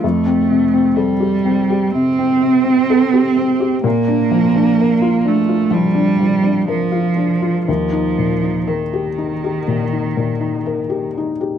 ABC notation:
X:1
M:4/4
L:1/16
Q:1/4=62
K:Bb
V:1 name="Felt piano"
F,, C C, C A G C G C, C C, C A G C G | B,, D F, D B F D F F, D F, D B F D F | E,, E B,, E B G E G B,, E B,, E B G E G |]
V:2 name="Cello" clef=bass
A,4 G,4 C8 | B,6 A,2 G,4 F,4 | F,4 E,8- E,2 z2 |]